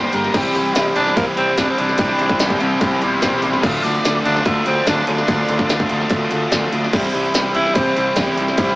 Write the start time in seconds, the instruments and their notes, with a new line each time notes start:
Already playing: overdriven electric guitar G2 D3 G3 A#3 D4, distorted electric guitar G2 G4, tonewheel organ G3 A#3 D4 G4, steel-string acoustic guitar G4, lead electric guitar C5
0.12 picked electric bass G1, overdriven electric guitar G3 A#3 D4, steel-string acoustic guitar G4, lead electric guitar A#4, ride
0.24 snare
0.33 picked electric bass C2, overdriven electric guitar C3 G3 C4 E4, distorted electric guitar E3, tonewheel organ G3 C4 E4 G4, steel-string acoustic guitar G4, lead electric guitar G4, kick, crash
0.37 distorted electric guitar G4
0.54 picked electric bass C2, overdriven electric guitar G3 C4 E4, steel-string acoustic guitar G4, ride
0.75 picked electric bass C2, overdriven electric guitar C3 G3 C4 E4, steel-string acoustic guitar G4, snare, ride
0.95 picked electric bass C2, overdriven electric guitar C3 G3 C4 E4, distorted electric guitar E3 G4, tenor saxophone D4, ride
1.07 snare
1.15 picked electric bass C2, overdriven electric guitar C3 G3 C4 E4, tenor saxophone A#3, kick, ride
1.36 picked electric bass C2, overdriven electric guitar C3 G3 C4 E4, tenor saxophone C4, steel-string acoustic guitar G4, ride
1.57 picked electric bass C2, overdriven electric guitar C3 G3 C4 E4, distorted electric guitar E3 G4, tenor saxophone D4, steel-string acoustic guitar G4, kick, snare, ride
1.70 tenor saxophone C4
1.78 picked electric bass C2, overdriven electric guitar G3 C4 E4, tenor saxophone D4, steel-string acoustic guitar G4, ride
1.89 snare
1.98 picked electric bass C2, overdriven electric guitar C3 G3 C4 E4, distorted electric guitar E3 G4, steel-string acoustic guitar G4, kick, ride
2.09 snare
2.19 picked electric bass C2, overdriven electric guitar G3 C4 E4, steel-string acoustic guitar G4, ride
2.29 kick
2.39 picked electric bass C2, overdriven electric guitar C3 G3 C4 E4, lead electric guitar E4 C5, steel-string acoustic guitar G4, snare, ride
2.50 kick
2.59 picked electric bass C2, overdriven electric guitar C3 G3 C4 E4, distorted electric guitar E3 G4, lead electric guitar E4 C5, ride
2.80 picked electric bass C2, overdriven electric guitar C3 G3 C4, lead electric guitar E4 C5, kick, ride
2.85 overdriven electric guitar E4
3.01 picked electric bass C2, overdriven electric guitar C3 G3 C4 E4, steel-string acoustic guitar G4, lead electric guitar A#4 D5, ride
3.22 picked electric bass C2, overdriven electric guitar C3 G3 C4 E4, distorted electric guitar E3 G4, steel-string acoustic guitar G4, lead electric guitar A#4 D5, kick, snare, ride
3.42 picked electric bass C2, overdriven electric guitar G3 C4 E4, steel-string acoustic guitar G4, lead electric guitar A#4 D5, ride
3.53 snare
3.62 picked electric bass D2, overdriven electric guitar D3 F3 A3 D4, tonewheel organ A3 D4 F4 A4, steel-string acoustic guitar F4 A4, lead electric guitar D5 F5, kick, crash
3.66 distorted electric guitar F4
3.83 picked electric bass D2, overdriven electric guitar F3 A3 D4, steel-string acoustic guitar F4 A4, lead electric guitar D5, ride
4.05 picked electric bass D2, overdriven electric guitar D3 F3 A3 D4, steel-string acoustic guitar F4 A4, snare, ride
4.25 picked electric bass D2, overdriven electric guitar D3 F3 A3 D4, tenor saxophone D4, distorted electric guitar F4, ride
4.37 snare
4.45 picked electric bass D2, overdriven electric guitar D3 F3 A3 D4, tenor saxophone A3, kick, ride
4.66 picked electric bass D2, overdriven electric guitar D3 F3 A3 D4, tenor saxophone C4, steel-string acoustic guitar F4 A4, ride
4.71 steel-string acoustic guitar D4
4.86 picked electric bass D2, overdriven electric guitar D3 F3 A3 D4, tenor saxophone D4, steel-string acoustic guitar F4 A4, kick, snare, ride
4.91 distorted electric guitar F4
5.07 picked electric bass D2, overdriven electric guitar F3 A3 D4, tenor saxophone D4, steel-string acoustic guitar F4 A4, ride
5.12 steel-string acoustic guitar D4
5.18 snare
5.28 picked electric bass D2, overdriven electric guitar D3 F3 A3 D4, steel-string acoustic guitar F4 A4, distorted electric guitar F4, kick, ride
5.48 picked electric bass D2, overdriven electric guitar F3 A3 D4, steel-string acoustic guitar F4 A4, ride
5.59 kick
5.69 picked electric bass D2, overdriven electric guitar D3 F3 A3 D4, steel-string acoustic guitar F4 A4, snare, ride
5.80 kick
5.89 picked electric bass D2, overdriven electric guitar D3 F3 A3 D4, distorted electric guitar F4, ride
6.01 snare
6.09 picked electric bass D2, overdriven electric guitar D3 F3 A3 D4, kick, ride
6.30 picked electric bass D2, overdriven electric guitar D3 F3 A3 D4, steel-string acoustic guitar F4 A4, ride
6.51 picked electric bass D2, overdriven electric guitar D3 F3 A3 D4, steel-string acoustic guitar F4 A4, distorted electric guitar F4, kick, snare, ride
6.71 picked electric bass D2, overdriven electric guitar F3 A3 D4, steel-string acoustic guitar F4 A4, ride
6.84 snare
6.92 picked electric bass C2, overdriven electric guitar C3 G3 C4 E4, distorted electric guitar E3, tonewheel organ G3 C4 E4 G4, steel-string acoustic guitar G4, kick, crash
7.04 snare
7.13 picked electric bass C2, overdriven electric guitar G3 C4 E4, steel-string acoustic guitar G4, ride
7.33 picked electric bass C2, overdriven electric guitar C3 G3 C4 E4, steel-string acoustic guitar G4, snare, ride
7.54 picked electric bass C2, overdriven electric guitar C3 G3 C4 E4, distorted electric guitar E3, tenor saxophone E4, ride
7.67 snare
7.74 picked electric bass C2, overdriven electric guitar C3 G3 C4 E4, tenor saxophone C4, kick, ride
7.96 picked electric bass C2, overdriven electric guitar C3 G3 C4 E4, steel-string acoustic guitar G4, ride
8.16 picked electric bass C2, overdriven electric guitar C3 G3 C4 E4, distorted electric guitar E3, steel-string acoustic guitar G4, kick, snare, ride
8.37 picked electric bass C2, tenor saxophone G3, overdriven electric guitar G3 C4 E4, ride
8.48 snare
8.57 picked electric bass C2, overdriven electric guitar C3 G3 C4 E4, distorted electric guitar E3, steel-string acoustic guitar G4, kick, ride
8.69 snare